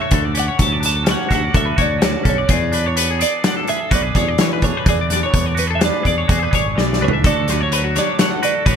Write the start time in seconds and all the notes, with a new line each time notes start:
Already playing: A3 D4 F#4 E5
0.02 C#5
0.11 D2 D3 A4, kick, closed hi-hat
0.25 D5
0.34 C#4 D5, closed hi-hat
0.39 F#5
0.48 C#5
0.58 D2 F#3, kick, snare, closed hi-hat
0.62 A5
0.72 D5
0.80 D4 B4, closed hi-hat
0.86 A5
0.96 A4
1.04 C#4, snare, closed hi-hat
1.09 C#5 F#5
1.29 D2 F#4 E5, kick, snare, closed hi-hat
1.35 F#5
1.44 D5
1.54 D2 D4 A4 E5, kick, closed hi-hat
1.65 B4
1.76 D2 F#4 C#5, kick, closed hi-hat
1.82 D5
1.99 D3 D5, snare, closed hi-hat
2.04 C#5
2.23 B1 C#4 A4, kick, closed hi-hat
2.29 C#5
2.38 D5
2.48 E2 E3 G#4, kick, closed hi-hat
2.53 D5
2.72 D4 B4, closed hi-hat
2.86 C#5
2.96 B3 B4, closed hi-hat
3.10 G#4
3.19 G#4 D5, closed hi-hat
3.44 D4 D5 F#5, snare, closed hi-hat
3.57 A4
3.67 G#4 B4 E5, closed hi-hat
3.80 A4
3.91 B1 F#4 B4 D5, kick, closed hi-hat
4.02 G#4
4.15 E2 G#4 C#5, kick, snare, closed hi-hat
4.28 D5
4.38 E3 C#5, snare, closed hi-hat
4.53 B4
4.62 E2 D4 G#4 C#5, kick, closed hi-hat
4.77 B4
4.84 E2 E3, kick, closed hi-hat
4.89 G#4 D5
5.01 D5
5.10 D4 D5, snare, closed hi-hat
5.23 C#5
5.30 E2 B3, kick, closed hi-hat
5.46 D5
5.55 F#4 B4, closed hi-hat
5.59 B4
5.67 G#4 A4
5.75 E5
5.79 D4 B4, snare, closed hi-hat
5.85 D5
6.03 E2 G#4 D5, kick, closed hi-hat
6.07 D5
6.18 C#5
6.28 E2 F#4 G#4, kick, closed hi-hat
6.39 G#4 B4
6.51 G#1 G#4 C#5, kick, closed hi-hat
6.75 B1 E3 D5, snare
6.93 snare
7.01 C#2 D4 B4 C#5
7.08 floor tom
7.13 E5
7.24 D2 D3 F#3 A3 D4 F#4 A4 D5, kick, closed hi-hat
7.48 A3 B4, snare, closed hi-hat
7.61 C#5
7.72 F#3 B4, closed hi-hat
7.84 F#4
7.96 D4 C#5 D5, snare, closed hi-hat
8.19 A3 C#5 F#5, snare, closed hi-hat
8.30 A4
8.43 F#4 B4 D5, closed hi-hat
8.55 A4
8.66 A1 D4 B4 C#5, kick, closed hi-hat